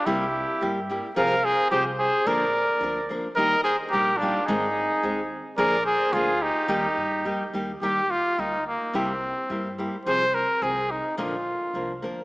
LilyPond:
<<
  \new Staff \with { instrumentName = "Trumpet" } { \time 2/4 \key ees \major \tempo 4 = 108 g'4. r8 | f''8 c''8 c''8 c''8 | d''4. r8 | ees''8 c''8 bes'8 f'8 |
aes'4. r8 | d''8 c''8 aes'8 g'8~ | g'4. r8 | r2 |
r2 | r2 | r2 | }
  \new Staff \with { instrumentName = "Trumpet" } { \time 2/4 \key ees \major e'4. r8 | bes'8 aes'8 g'8 aes'8 | bes'4. r8 | bes'8 aes'8 g'8 d'8 |
ees'4. r8 | bes'8 aes'8 f'8 ees'8~ | ees'4. r8 | g'8 f'8 ees'8 bes8 |
c'4. r8 | c''8 bes'8 aes'8 ees'8 | f'4. r8 | }
  \new Staff \with { instrumentName = "Nylon-string guitar" } { \time 2/4 \key ees \major <c g bes e' g'>8 r8 <g bes e' g'>8 <g bes e' g'>8 | <c f c' f' aes'>8 r8 <f c' f' aes'>8 r8 | <bes, d f bes d' bes'>8 r8 <f bes d' bes'>8 <f bes d' bes'>8 | <ees g bes ees' g'>8 r8 <g bes ees' g'>8 <g bes ees' g'>8 |
<aes, ees aes c' ees' aes'>8 r8 <aes c' ees' aes'>8 r8 | <bes, d f bes d' aes'>8 r8 <f bes d' aes'>8 r8 | <ees g bes ees' g'>8 r8 <g bes ees' g'>8 <g bes ees' g'>8 | <ees g bes ees' g'>8 r8 <g bes ees' g'>8 r8 |
<c g bes e' g'>8 r8 <g bes e' g'>8 <g bes e' g'>8 | <c f c' f' aes'>8 r8 <f c' f' aes'>8 r8 | <bes, d f bes d' bes'>8 r8 <f bes d' bes'>8 <f bes d' bes'>8 | }
  \new Staff \with { instrumentName = "Upright bass" } { \clef bass \time 2/4 \key ees \major c,4 g,4 | c,4 c,4 | bes,,4 d,4 | ees,4 bes,,4 |
aes,,4 ees,4 | bes,,4 d,4 | ees,8 g,8 f,8 ees,8 | ees,4 d,4 |
c,4 g,4 | c,4 c,4 | bes,,4 c,8 d,8 | }
>>